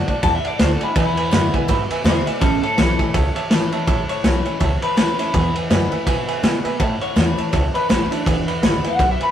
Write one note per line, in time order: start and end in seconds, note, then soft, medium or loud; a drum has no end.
0.07 0.23 D4 medium
0.07 0.22 F#4 medium
0.07 0.17 D5 medium
0.07 0.17 F#5 medium
0.07 0.17 A5 loud
0.07 muted upright bass stroke medium
0.07 kick medium
0.07 ride medium
0.22 0.44 E2 medium
0.22 0.93 A2 loud
0.22 0.35 D5 medium
0.22 0.36 F#5 medium
0.22 0.35 A5 loud
0.22 0.36 A5 loud
0.22 kick loud
0.22 ride medium
0.35 0.47 E5 loud
0.44 0.53 D5 medium
0.44 0.59 D5 medium
0.44 0.53 F#5 medium
0.44 0.54 A5 medium
0.44 muted upright bass stroke medium
0.44 ride medium
0.59 0.80 D2 medium
0.59 0.80 D3 medium
0.59 0.80 A3 loud
0.59 0.80 D4 medium
0.59 0.79 F#4 loud
0.59 0.71 C5 medium
0.59 0.72 D5 medium
0.59 0.72 F#5 medium
0.59 0.73 A5 medium
0.59 snare loud
0.59 ride medium
0.71 0.83 A4 medium
0.80 0.96 D4 medium
0.80 0.94 E4 medium
0.80 0.95 F#4 medium
0.80 0.90 D5 medium
0.80 0.90 F#5 medium
0.80 0.91 G#5 medium
0.80 muted upright bass stroke medium
0.80 ride medium
0.95 1.16 E2 medium
0.95 1.66 E2 loud
0.95 1.66 E4 loud
0.95 1.08 B4 loud
0.95 1.09 E5 medium
0.95 1.09 G#5 loud
0.95 kick loud
0.95 ride medium
1.16 1.26 B4 medium
1.16 1.26 E5 medium
1.16 1.26 G#5 medium
1.16 muted upright bass stroke soft
1.16 ride medium
1.31 1.53 F#2 loud
1.31 1.67 D3 medium
1.31 1.67 G#3 medium
1.31 1.67 B3 loud
1.31 1.68 E4 loud
1.31 1.45 B4 medium
1.31 1.45 E5 medium
1.31 1.46 F#5 medium
1.31 snare loud
1.31 ride medium
1.53 1.62 B4 loud
1.53 1.63 E5 medium
1.53 1.63 G#5 loud
1.53 muted upright bass stroke medium
1.53 kick medium
1.53 ride medium
1.68 1.89 G#2 medium
1.68 2.38 B2 medium
1.68 1.81 B4 loud
1.68 1.82 E5 loud
1.68 1.82 B5 loud
1.68 kick loud
1.68 ride medium
1.90 1.99 B4 medium
1.90 1.99 E5 medium
1.90 2.00 G#5 loud
1.90 muted upright bass stroke medium
1.90 ride medium
2.04 2.25 E2 medium
2.04 2.25 D3 medium
2.04 2.26 G#3 medium
2.04 2.26 B3 medium
2.04 2.25 E4 loud
2.04 2.18 B4 medium
2.04 2.26 C5 medium
2.04 2.26 E5 medium
2.04 2.18 E5 medium
2.04 2.19 G#5 medium
2.04 snare loud
2.04 ride medium
2.26 2.41 B3 medium
2.26 2.41 E4 medium
2.26 2.35 B4 medium
2.26 2.41 B4 medium
2.26 2.41 D5 medium
2.26 2.36 E5 medium
2.26 2.36 G#5 medium
2.26 muted upright bass stroke medium
2.26 ride medium
2.40 2.62 A1 medium
2.40 3.11 A2 loud
2.40 2.61 C#4 medium
2.40 2.61 A4 medium
2.40 2.54 C#5 loud
2.40 2.54 E5 medium
2.40 2.55 A5 loud
2.40 kick loud
2.40 ride loud
2.62 3.34 A4 loud
2.62 2.71 C#5 medium
2.62 2.72 E5 medium
2.62 2.72 A5 medium
2.62 muted upright bass stroke medium
2.62 ride medium
2.77 2.99 B1 loud
2.77 2.98 E3 loud
2.77 2.99 A3 medium
2.77 2.99 C#4 loud
2.77 2.98 E4 loud
2.77 2.90 C#5 medium
2.77 2.91 E5 medium
2.77 2.91 A5 loud
2.77 snare loud
2.77 ride medium
2.98 3.14 C#4 medium
2.98 3.14 E4 medium
2.98 3.08 C#5 medium
2.98 3.08 E5 medium
2.98 3.09 G#5 medium
2.98 muted upright bass stroke medium
2.98 kick medium
2.98 ride medium
3.13 3.35 C#2 loud
3.13 3.27 C#5 loud
3.13 3.27 E5 loud
3.13 3.28 A5 loud
3.13 kick loud
3.13 ride loud
3.34 3.44 C#5 medium
3.34 3.45 E5 medium
3.34 3.45 A5 loud
3.34 muted upright bass stroke medium
3.34 ride medium
3.50 3.71 G#1 loud
3.50 3.72 E3 medium
3.50 3.72 A3 medium
3.50 3.72 C#4 medium
3.50 3.71 E4 medium
3.50 3.63 C#5 medium
3.50 3.64 E5 medium
3.50 3.64 A5 loud
3.50 snare loud
3.50 ride medium
3.72 3.87 C#4 medium
3.72 3.87 E4 medium
3.72 3.81 C#5 loud
3.72 3.81 E5 medium
3.72 3.82 A5 loud
3.72 muted upright bass stroke soft
3.72 ride medium
3.87 4.08 A1 medium
3.87 4.58 A2 medium
3.87 4.00 C#5 loud
3.87 4.00 E5 loud
3.87 4.01 A5 loud
3.87 kick loud
3.87 ride loud
4.08 4.17 C#5 medium
4.08 4.80 C#5 loud
4.08 4.18 E5 medium
4.08 4.19 A5 medium
4.08 muted upright bass stroke medium
4.08 ride medium
4.23 4.45 B1 loud
4.23 4.45 E3 medium
4.23 4.45 A3 medium
4.23 4.45 C#4 medium
4.23 4.44 E4 loud
4.23 4.36 C#5 medium
4.23 4.37 E5 medium
4.23 4.37 A5 medium
4.23 snare loud
4.23 ride medium
4.45 4.61 C#4 soft
4.45 4.60 E4 medium
4.45 4.54 C#5 medium
4.45 4.55 E5 medium
4.45 4.55 G#5 medium
4.45 muted upright bass stroke medium
4.45 ride medium
4.59 4.82 C#2 medium
4.59 5.30 E2 medium
4.59 4.73 C#5 loud
4.59 4.73 E5 loud
4.59 4.74 A5 loud
4.59 kick loud
4.59 ride medium
4.81 4.96 B4 medium
4.81 4.91 C#5 medium
4.81 4.91 E5 medium
4.81 4.92 A5 medium
4.81 muted upright bass stroke medium
4.81 ride medium
4.96 5.17 D2 medium
4.96 5.17 E3 medium
4.96 5.18 A3 medium
4.96 5.18 C#4 medium
4.96 5.17 E4 medium
4.96 5.18 B4 medium
4.96 5.10 C#5 medium
4.96 5.10 E5 medium
4.96 5.11 A5 medium
4.96 snare loud
4.96 ride loud
5.18 5.34 C#4 medium
5.18 5.33 E4 medium
5.18 5.54 E4 loud
5.18 5.27 C#5 medium
5.18 5.28 E5 medium
5.18 5.28 A5 medium
5.18 muted upright bass stroke soft
5.18 ride medium
5.33 5.55 E2 medium
5.33 6.04 E2 medium
5.33 5.46 B4 loud
5.33 5.47 E5 medium
5.33 5.47 G#5 loud
5.33 kick loud
5.33 ride medium
5.55 5.64 B4 medium
5.55 5.64 E5 medium
5.55 5.65 G#5 medium
5.55 muted upright bass stroke medium
5.55 ride medium
5.69 5.91 F#2 loud
5.69 5.91 D3 medium
5.69 5.91 G#3 loud
5.69 5.91 B3 loud
5.69 5.90 E4 loud
5.69 5.83 B4 loud
5.69 5.83 E5 loud
5.69 5.84 G#5 loud
5.69 snare loud
5.69 ride medium
5.91 6.07 B3 soft
5.91 6.06 E4 medium
5.91 6.00 B4 medium
5.91 6.01 E5 medium
5.91 6.01 G#5 medium
5.91 muted upright bass stroke medium
5.91 ride medium
6.06 6.27 G#2 loud
6.06 6.77 B2 medium
6.06 6.19 B4 loud
6.06 6.19 E5 loud
6.06 6.20 G#5 loud
6.06 kick loud
6.06 ride medium
6.27 6.37 B4 medium
6.27 6.37 E5 medium
6.27 6.37 G#5 loud
6.27 muted upright bass stroke soft
6.27 ride medium
6.42 6.64 B2 medium
6.42 6.64 D3 medium
6.42 6.64 G#3 medium
6.42 6.65 B3 medium
6.42 6.64 E4 medium
6.42 6.56 B4 medium
6.42 6.56 E5 medium
6.42 6.56 G#5 loud
6.42 snare loud
6.42 ride medium
6.64 6.80 B3 soft
6.64 6.79 E4 medium
6.64 6.73 B4 loud
6.64 6.74 E5 medium
6.64 6.74 G#5 loud
6.64 muted upright bass stroke medium
6.64 ride medium
6.79 7.01 A2 medium
6.79 7.50 A2 loud
6.79 6.92 C#5 loud
6.79 6.93 E5 loud
6.79 6.93 A5 loud
6.79 kick loud
6.79 ride medium
7.01 7.10 C#5 medium
7.01 7.72 C#5 loud
7.01 7.10 E5 medium
7.01 7.11 F#5 medium
7.01 muted upright bass stroke medium
7.01 ride medium
7.16 7.37 E2 medium
7.16 7.37 E3 loud
7.16 7.37 A3 loud
7.16 7.37 C#4 medium
7.16 7.36 E4 loud
7.16 7.29 C#5 medium
7.16 7.29 E5 medium
7.16 7.30 F#5 loud
7.16 snare loud
7.16 ride medium
7.37 7.53 C#4 medium
7.37 7.52 E4 medium
7.37 7.47 C#5 medium
7.37 7.47 E5 medium
7.37 7.47 A5 medium
7.37 muted upright bass stroke medium
7.37 ride medium
7.52 7.74 C#2 medium
7.52 8.23 E2 medium
7.52 7.65 C#5 loud
7.52 7.66 E5 loud
7.52 7.66 A5 loud
7.52 kick loud
7.52 ride medium
7.74 7.88 B4 loud
7.74 7.83 C#5 medium
7.74 7.83 E5 medium
7.74 7.84 A5 medium
7.74 muted upright bass stroke medium
7.74 ride medium
7.88 8.10 A1 loud
7.88 8.10 E3 medium
7.88 8.10 A3 medium
7.88 8.10 C#4 medium
7.88 8.10 E4 medium
7.88 8.10 B4 medium
7.88 8.02 C#5 medium
7.88 8.02 E5 medium
7.88 8.03 A5 medium
7.88 snare loud
7.88 ride loud
8.10 8.26 C#4 soft
8.10 8.46 D4 medium
8.10 8.25 E4 medium
8.10 8.19 C#5 medium
8.10 8.20 E5 medium
8.10 8.20 A5 loud
8.10 muted upright bass stroke medium
8.10 ride medium
8.25 8.47 E1 medium
8.25 8.97 E2 medium
8.25 8.38 B4 loud
8.25 8.39 E5 medium
8.25 8.39 G#5 loud
8.25 kick loud
8.25 ride loud
8.46 8.56 B4 medium
8.46 8.56 E5 medium
8.46 8.57 B5 medium
8.46 muted upright bass stroke medium
8.46 ride medium
8.61 8.84 G#1 loud
8.61 8.83 D3 medium
8.61 8.84 G#3 medium
8.61 8.84 B3 loud
8.61 8.84 E4 loud
8.61 8.75 B4 medium
8.61 8.75 E5 medium
8.61 8.76 B5 loud
8.61 snare loud
8.61 ride medium
8.83 9.00 B3 soft
8.83 8.99 E4 medium
8.83 8.92 B4 medium
8.83 8.93 E5 medium
8.83 8.93 G#5 medium
8.83 muted upright bass stroke medium
8.83 ride medium
8.87 9.11 F#5 loud
8.98 9.20 B1 medium
8.98 9.31 B2 medium
8.98 9.11 B4 medium
8.98 9.12 E5 medium
8.98 9.12 B5 loud
8.98 kick loud
8.98 ride medium
9.11 9.23 E5 medium
9.19 9.29 B4 medium
9.19 9.29 E5 medium
9.19 9.30 G#5 medium
9.19 9.31 B5 medium
9.19 muted upright bass stroke medium
9.19 ride medium